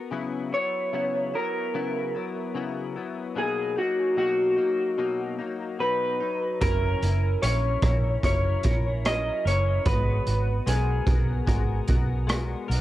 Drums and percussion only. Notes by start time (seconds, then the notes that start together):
6.61 kick, closed hi-hat
7.02 closed hi-hat
7.43 closed hi-hat
7.82 kick, cross-stick, closed hi-hat
8.23 kick, closed hi-hat
8.63 kick, closed hi-hat
9.05 cross-stick, closed hi-hat
9.47 closed hi-hat
9.86 kick, closed hi-hat
10.27 closed hi-hat
10.67 closed hi-hat
11.07 kick, closed hi-hat
11.47 kick, closed hi-hat
11.88 kick, closed hi-hat
12.29 cross-stick, closed hi-hat
12.71 closed hi-hat